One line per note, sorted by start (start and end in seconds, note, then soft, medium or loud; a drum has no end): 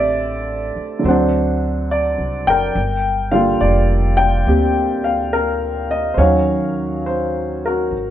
0.00 0.72 A1 medium
0.00 0.98 D3 soft
0.00 1.04 A3 soft
0.00 1.05 C4 soft
0.00 1.06 G4 soft
0.00 0.74 C5 soft
0.00 0.73 D5 medium
0.00 1.06 E5 medium
0.76 muted upright bass stroke soft
0.99 2.73 D3 soft
0.99 2.74 F#3 soft
1.04 2.14 D2 medium
1.04 2.76 C4 soft
1.04 1.87 C5 medium
1.04 2.73 F#5 soft
1.10 2.78 D4 soft
1.91 2.49 D5 medium
2.18 2.45 C2 soft
2.47 2.73 F#1 soft
2.47 4.15 A#4 soft
2.47 3.28 G5 medium
2.75 3.57 G1 medium
3.31 6.18 D3 soft
3.31 6.18 G3 soft
3.31 4.44 A#3 soft
3.31 6.19 F4 soft
3.31 3.58 F5 medium
3.61 4.43 F1 medium
3.61 4.13 D5 medium
4.17 5.06 G5 medium
4.46 6.14 D2 medium
4.46 6.18 A#3 soft
4.46 6.19 C4 soft
4.46 6.19 G4 soft
5.04 5.31 F5 medium
5.33 5.91 A#4 medium
5.91 6.15 D#5 medium
6.14 7.88 D#2 medium
6.14 7.92 D#3 soft
6.14 7.92 F#3 soft
6.14 6.19 C5 soft
6.14 7.01 C#5 medium
6.19 7.93 C#4 soft
6.19 7.66 F#4 soft
6.19 7.93 F5 soft
7.06 7.59 C5 medium
7.66 8.10 F#4 soft
7.66 8.10 A#4 soft
7.91 8.10 G#1 soft